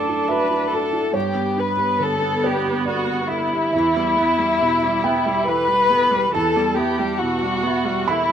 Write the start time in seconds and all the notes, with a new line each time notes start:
Already playing: F#2 F#3 A3 D4 E4 A4 D5 F#5 A5
0.08 E4
0.28 F#4 B4 E5
0.50 E4
0.72 F#4 A4
0.93 E4
1.14 G2 B3 G4 C#5
1.35 B3
1.56 D4 B4
1.77 G4
2.00 D3 A4
2.22 B3
2.43 G4 B4 D5
2.66 G4
2.86 F#4 A4 D5
3.09 G4
3.30 E4 A4
3.53 G4
3.73 E2 E3 E5
3.95 G3 B3
4.17 B3 E5
4.38 G3 G4
4.61 B2 E3
4.82 G3 B3
5.04 B3 E5 G5
5.26 G3 G4
5.46 E3 B4
5.52 A4
5.68 G3
5.73 G4
5.90 B3 A4
6.11 G3 G4
6.33 E2 E3 A4 A5
6.56 G3 B3
6.76 B3 G4 E5
6.99 G3 G4
7.20 B2 E3 F#4
7.41 G3 B3
7.63 B3 E5
7.85 G3 G4
8.07 E3 E4 A4 B5